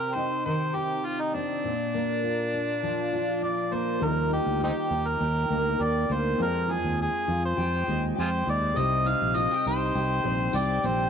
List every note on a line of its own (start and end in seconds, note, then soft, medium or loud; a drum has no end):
0.00 1.63 C3 medium
0.00 1.33 C4 soft
0.00 0.73 G4 medium
0.00 0.16 A#4 medium
0.14 1.04 D#4 soft
0.14 0.45 C5 medium
0.45 1.70 D#3 medium
0.45 0.77 C5 medium
0.74 1.70 G4 medium
0.74 1.07 G4 medium
1.05 1.22 F4 medium
1.20 1.35 D#4 medium
1.34 1.70 C4 medium
1.34 3.42 D4 medium
1.64 4.00 A#2 medium
1.94 3.71 A#3 soft
2.23 3.12 F4 medium
2.54 3.41 D4 soft
2.83 4.33 F3 medium
3.12 4.33 F4 medium
3.42 4.07 D4 soft
3.42 3.75 D5 medium
3.72 5.49 A#3 soft
3.72 4.05 C5 medium
4.00 4.38 D#2 medium
4.00 6.39 D#3 medium
4.00 6.34 G3 medium
4.00 6.35 D#4 medium
4.00 6.36 F4 soft
4.00 4.09 A4 soft
4.00 4.32 A#4 medium
4.11 6.40 A#4 medium
4.30 4.90 D#4 soft
4.30 4.60 G4 medium
4.46 4.71 D2 medium
4.61 4.72 C4 medium
4.61 4.72 D#4 medium
4.61 5.20 G4 medium
4.61 5.09 G4 medium
4.91 5.15 D#2 medium
4.91 6.45 D#4 soft
5.08 5.84 A#4 medium
5.20 5.45 D#2 medium
5.20 5.79 G4 medium
5.50 5.75 D2 medium
5.50 6.08 A#3 medium
5.79 6.04 D#2 medium
5.79 6.71 G4 medium
5.79 6.14 D5 medium
6.09 6.34 D2 medium
6.09 6.45 A#3 medium
6.09 6.41 C5 medium
6.37 8.76 F2 medium
6.37 6.76 F2 medium
6.37 8.72 G#3 medium
6.37 8.72 F4 medium
6.37 8.74 C5 medium
6.37 8.73 G5 medium
6.42 6.73 A#4 medium
6.68 7.26 F4 medium
6.68 7.00 G#4 medium
6.84 7.08 D#2 medium
7.02 7.42 G#4 medium
7.28 7.52 F2 medium
7.28 8.82 F4 soft
7.45 8.03 C5 medium
7.57 7.82 F2 medium
7.57 8.15 G4 medium
7.87 8.12 D#2 medium
7.87 8.44 G#3 medium
8.15 8.42 F2 medium
8.15 9.35 G4 medium
8.20 8.28 F4 medium
8.20 8.26 G#4 medium
8.20 8.46 C5 medium
8.45 8.71 D#2 loud
8.45 8.82 G#3 medium
8.50 8.79 D5 medium
8.74 9.13 C2 loud
8.74 11.10 C3 medium
8.74 10.21 G3 medium
8.74 10.21 C4 soft
8.74 10.22 D#4 medium
8.74 tambourine soft
8.78 10.23 C5 medium
8.78 9.09 D#5 loud
9.05 9.65 D#4 medium
9.05 9.38 F5 medium
9.05 tambourine soft
9.22 9.46 A#1 medium
9.35 9.51 F4 medium
9.35 9.66 D#5 loud
9.35 tambourine medium
9.51 9.94 G4 medium
9.65 9.90 C2 medium
9.65 11.10 D#4 medium
9.65 10.58 C5 loud
9.65 tambourine soft
9.95 10.20 C2 medium
9.95 10.52 G4 medium
9.95 tambourine soft
10.24 10.49 A#1 medium
10.24 11.10 G3 soft
10.24 10.83 C4 medium
10.24 11.10 C4 soft
10.24 11.10 D#4 soft
10.24 11.10 C5 medium
10.53 10.79 C2 medium
10.53 11.10 G4 medium
10.53 10.87 D5 medium
10.53 tambourine medium
10.83 11.08 A#1 medium
10.83 11.10 C4 medium
10.83 11.10 C5 medium
10.83 tambourine soft